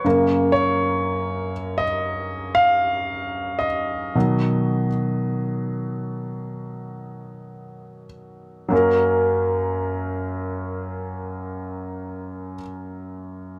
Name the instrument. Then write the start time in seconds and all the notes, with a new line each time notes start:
grand piano
Already playing: C#5
0.04 F#2 C#3 A#3
0.52 C#5
1.78 D#5
2.55 F5
3.59 D#5
4.15 B2 D#3 F#3
8.68 F#2 F#3 A#3
8.73 C#4 A#4